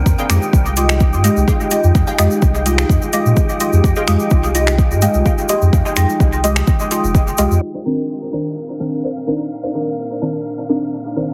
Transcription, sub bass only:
X:1
M:4/4
L:1/16
Q:1/4=127
K:Cm
V:1 name="Sub bass" clef=bass
F,, z F,, z C,,4- C,, A,, z C,, z3 F,, | F,, z F,, z C,,4 F,, z2 B,, z3 F,, | F,, z F,, z C,,4- C,, A,, z C,, z3 F,, | F,, z F,, z C,,4 z3 F,,,3 C,, F,, |
z16 | z16 |]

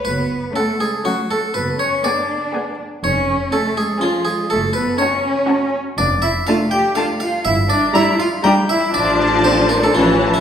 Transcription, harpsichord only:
X:1
M:3/4
L:1/16
Q:1/4=121
K:F#m
V:1 name="Harpsichord"
B4 A2 G2 F2 A2 | B2 c2 d6 z2 | c4 A2 G2 ^E2 G2 | A2 B2 c6 z2 |
[K:Dm] d2 e2 f2 g2 f2 f2 | e2 d2 e2 f2 g2 e2 | d4 c2 B A F3 E |]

